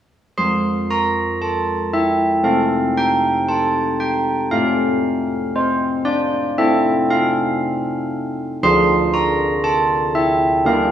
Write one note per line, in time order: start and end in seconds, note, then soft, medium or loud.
0.38 4.48 F3 medium
0.38 0.88 C6 medium
0.91 1.40 A#5 medium
1.42 1.92 A5 medium
1.93 2.44 E5 medium
2.43 4.47 C4 soft
2.43 4.47 A4 soft
2.43 2.95 F5 medium
2.97 3.47 G5 medium
3.49 3.98 A5 medium
4.00 4.50 G5 medium
4.51 8.58 A3 medium
4.51 5.51 F5 medium
5.56 6.05 C5 medium
6.05 6.55 D5 medium
6.58 8.58 C4 soft
6.58 8.58 A4 soft
6.58 7.07 E5 medium
7.10 8.07 F5 medium
8.63 10.63 D3 medium
8.63 10.63 D4 soft
8.63 10.63 F4 medium
8.63 9.12 C6 medium
9.14 9.62 A#5 medium
9.64 10.13 A5 medium
10.15 10.64 E5 medium
10.65 10.91 A#3 medium
10.65 10.91 D4 soft
10.65 10.91 G4 soft
10.65 10.91 F5 medium